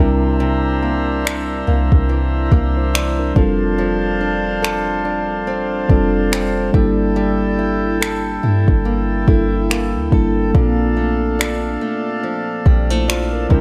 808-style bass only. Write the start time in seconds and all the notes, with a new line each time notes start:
0.00 C2
1.68 C2
1.92 C2
2.52 C2
3.36 F1
5.90 F1
6.74 G1
8.44 G2
8.68 G1
9.28 G1
9.95 D2
10.13 G1
10.55 A#1
12.66 A#1
13.51 C2